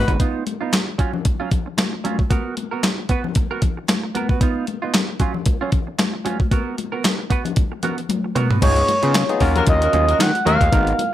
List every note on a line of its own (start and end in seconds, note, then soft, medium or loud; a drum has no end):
0.00 0.11 D#4 loud
0.00 0.11 F#4 loud
0.00 0.11 B4 loud
0.08 0.17 G#1 medium
0.08 0.18 B3 medium
0.08 0.19 F#4 medium
0.08 0.18 B4 medium
0.08 kick medium
0.08 closed hi-hat soft
0.19 0.44 B3 medium
0.19 0.45 D#4 medium
0.19 0.45 F4 medium
0.19 kick loud
0.19 closed hi-hat medium
0.19 muted conga soft
0.46 muted clean electric guitar stroke soft
0.46 closed hi-hat medium
0.46 muted conga medium
0.61 0.72 B3 medium
0.61 0.72 D#4 medium
0.61 0.71 F4 medium
0.73 snare loud
0.73 clap medium
0.73 closed hi-hat medium
0.73 high conga medium
0.87 muted clean electric guitar stroke soft
0.98 1.15 F#3 medium
0.98 1.14 C#4 medium
0.98 1.12 F4 medium
0.98 kick medium
0.98 closed hi-hat medium
1.13 muted clean electric guitar stroke soft
1.13 low conga medium
1.25 muted clean electric guitar stroke soft
1.25 kick loud
1.25 closed hi-hat medium
1.25 muted conga medium
1.40 1.50 F#3 medium
1.40 1.51 C#4 medium
1.40 1.52 F4 medium
1.51 kick medium
1.51 closed hi-hat medium
1.51 low conga medium
1.66 muted clean electric guitar stroke soft
1.77 muted clean electric guitar stroke soft
1.77 snare loud
1.77 clap medium
1.77 closed hi-hat medium
1.77 high conga medium
1.93 muted clean electric guitar stroke soft
2.04 2.20 F#3 medium
2.04 2.19 C#4 medium
2.04 2.18 F4 medium
2.04 closed hi-hat medium
2.04 high conga medium
2.19 muted clean electric guitar stroke soft
2.19 kick medium
2.30 2.55 B3 medium
2.30 2.55 F#4 medium
2.30 2.56 A#4 medium
2.30 kick loud
2.30 closed hi-hat medium
2.30 muted conga soft
2.57 muted clean electric guitar stroke soft
2.57 closed hi-hat medium
2.57 muted conga medium
2.71 2.83 B3 medium
2.71 2.82 F#4 medium
2.71 2.82 A#4 medium
2.83 snare loud
2.83 clap medium
2.83 closed hi-hat medium
2.83 high conga medium
2.98 muted clean electric guitar stroke soft
3.09 3.26 B3 medium
3.09 3.25 F#4 medium
3.09 3.24 B4 medium
3.09 kick medium
3.09 closed hi-hat medium
3.24 muted clean electric guitar stroke soft
3.24 low conga medium
3.35 muted clean electric guitar stroke soft
3.35 kick loud
3.35 closed hi-hat medium
3.35 muted conga medium
3.51 3.61 B3 medium
3.51 3.62 F#4 medium
3.51 3.63 A#4 medium
3.62 muted clean electric guitar stroke soft
3.62 kick medium
3.62 closed hi-hat medium
3.62 low conga medium
3.77 muted clean electric guitar stroke soft
3.88 muted clean electric guitar stroke soft
3.88 snare medium
3.88 clap medium
3.88 closed hi-hat medium
3.88 high conga medium
4.03 muted clean electric guitar stroke soft
4.15 4.30 B3 medium
4.15 4.29 F#4 medium
4.15 4.29 A#4 medium
4.15 closed hi-hat medium
4.15 high conga medium
4.29 4.40 B3 medium
4.29 4.40 F#4 medium
4.29 4.40 B4 medium
4.29 kick medium
4.41 4.65 B3 medium
4.41 4.66 D#4 medium
4.41 4.66 F4 medium
4.41 kick loud
4.41 closed hi-hat medium
4.41 muted conga soft
4.67 muted clean electric guitar stroke soft
4.67 closed hi-hat medium
4.67 muted conga medium
4.82 4.93 B3 medium
4.82 4.93 D#4 medium
4.82 4.92 F4 medium
4.94 snare loud
4.94 clap medium
4.94 closed hi-hat medium
4.94 high conga medium
5.08 muted clean electric guitar stroke soft
5.20 5.36 F#3 medium
5.20 5.35 C#4 medium
5.20 5.34 F4 medium
5.20 kick medium
5.20 closed hi-hat medium
5.34 muted clean electric guitar stroke soft
5.34 low conga medium
5.46 muted clean electric guitar stroke soft
5.46 kick loud
5.46 closed hi-hat medium
5.46 muted conga medium
5.61 5.71 F#3 medium
5.61 5.72 C#4 medium
5.61 5.72 F4 medium
5.72 kick loud
5.72 closed hi-hat medium
5.72 low conga medium
5.87 muted clean electric guitar stroke soft
5.98 muted clean electric guitar stroke soft
5.98 snare medium
5.98 clap medium
5.98 closed hi-hat medium
5.98 high conga medium
6.13 muted clean electric guitar stroke soft
6.25 6.41 F#3 medium
6.25 6.40 C#4 medium
6.25 6.39 F4 medium
6.25 closed hi-hat medium
6.25 high conga medium
6.40 muted clean electric guitar stroke soft
6.40 kick medium
6.51 6.76 B3 medium
6.51 6.76 F#4 medium
6.51 6.77 A#4 medium
6.51 kick loud
6.51 closed hi-hat medium
6.51 muted conga soft
6.78 muted clean electric guitar stroke soft
6.78 closed hi-hat medium
6.78 muted conga medium
6.92 7.04 B3 medium
6.92 7.03 F#4 medium
6.92 7.03 A#4 medium
7.04 snare loud
7.04 clap medium
7.04 closed hi-hat medium
7.04 high conga medium
7.19 muted clean electric guitar stroke soft
7.30 7.47 B3 medium
7.30 7.45 F#4 medium
7.30 7.45 B4 medium
7.30 kick medium
7.30 closed hi-hat medium
7.45 muted clean electric guitar stroke soft
7.45 closed hi-hat soft
7.45 low conga medium
7.56 kick loud
7.56 closed hi-hat medium
7.56 muted conga soft
7.72 muted clean electric guitar stroke soft
7.83 7.99 B3 medium
7.83 7.98 F#4 medium
7.83 7.97 A#4 medium
7.83 closed hi-hat medium
7.83 low conga medium
7.98 muted clean electric guitar stroke soft
7.98 closed hi-hat soft
8.09 muted clean electric guitar stroke soft
8.09 closed hi-hat medium
8.09 high tom soft
8.09 high conga medium
8.24 muted clean electric guitar stroke soft
8.35 8.51 B3 medium
8.35 8.50 F#4 medium
8.35 8.50 A#4 medium
8.35 closed hi-hat medium
8.35 mid tom medium
8.35 high conga medium
8.51 8.61 B3 soft
8.51 8.61 F#4 soft
8.51 8.61 B4 medium
8.51 floor tom medium
8.62 8.83 C#2 loud
8.62 8.78 B3 medium
8.62 8.91 B3 medium
8.62 8.91 D#4 medium
8.62 8.77 D#4 medium
8.62 8.91 F4 medium
8.62 8.76 F4 medium
8.62 8.91 G#4 medium
8.62 9.37 C#5 loud
8.62 kick loud
8.62 closed hi-hat medium
8.62 crash loud
8.62 muted conga medium
8.76 muted clean electric guitar stroke soft
8.76 closed hi-hat medium
8.88 muted clean electric guitar stroke soft
8.88 closed hi-hat medium
8.88 muted conga medium
9.02 9.24 C#3 loud
9.02 9.21 B3 medium
9.02 9.13 B3 medium
9.02 9.21 D#4 medium
9.02 9.14 D#4 medium
9.02 9.13 F4 medium
9.02 9.21 F4 medium
9.02 9.22 G#4 medium
9.02 closed hi-hat medium
9.14 snare loud
9.14 clap loud
9.14 closed hi-hat medium
9.14 high conga medium
9.29 9.41 B3 loud
9.29 9.41 D#4 medium
9.29 9.40 F4 medium
9.29 9.41 G#4 loud
9.29 muted clean electric guitar stroke medium
9.29 closed hi-hat medium
9.40 9.62 D#2 loud
9.40 9.57 F#3 medium
9.40 10.26 C#4 loud
9.40 9.55 C#4 loud
9.40 10.26 F4 medium
9.40 10.26 F#4 medium
9.40 9.55 F#4 loud
9.40 10.26 A#4 loud
9.40 kick medium
9.40 open hi-hat medium
9.55 9.63 A#3 loud
9.55 9.63 F#4 loud
9.55 9.64 A#4 loud
9.55 muted clean electric guitar stroke soft
9.55 closed hi-hat medium
9.55 low conga medium
9.67 9.88 D#2 loud
9.67 10.22 D#5 loud
9.67 muted clean electric guitar stroke soft
9.67 kick loud
9.67 closed hi-hat loud
9.67 muted conga medium
9.81 9.92 A#3 medium
9.81 9.92 F#4 medium
9.81 9.92 A#4 medium
9.81 muted clean electric guitar stroke soft
9.81 closed hi-hat medium
9.93 10.14 D#2 medium
9.93 10.09 F#3 medium
9.93 10.08 C#4 medium
9.93 10.06 F4 loud
9.93 closed hi-hat medium
9.93 muted conga soft
10.08 10.18 A#3 medium
10.08 10.19 F#4 medium
10.08 10.19 A#4 medium
10.08 muted clean electric guitar stroke soft
10.08 closed hi-hat medium
10.19 10.31 D#3 loud
10.19 10.46 F#5 loud
10.19 muted clean electric guitar stroke medium
10.19 snare loud
10.19 clap medium
10.19 closed hi-hat medium
10.19 high conga medium
10.34 muted clean electric guitar stroke soft
10.34 closed hi-hat medium
10.45 10.58 D#2 loud
10.45 10.62 F#3 medium
10.45 10.63 A#3 loud
10.45 10.60 C#4 medium
10.45 10.59 F4 loud
10.45 10.63 F#4 loud
10.45 10.63 A#4 loud
10.45 11.14 F5 loud
10.45 closed hi-hat medium
10.45 high conga medium
10.60 10.70 D#2 medium
10.60 muted clean electric guitar stroke soft
10.60 kick medium
10.60 closed hi-hat soft
10.72 10.93 G#1 loud
10.72 10.97 B3 medium
10.72 11.01 B3 medium
10.72 11.01 D#4 medium
10.72 11.01 F#4 medium
10.72 10.97 F#4 medium
10.72 11.02 A#4 medium
10.72 10.98 A#4 medium
10.72 kick loud
10.72 closed hi-hat loud
10.72 muted conga soft
10.87 closed hi-hat medium
10.98 muted clean electric guitar stroke soft
10.98 closed hi-hat medium
10.98 muted conga medium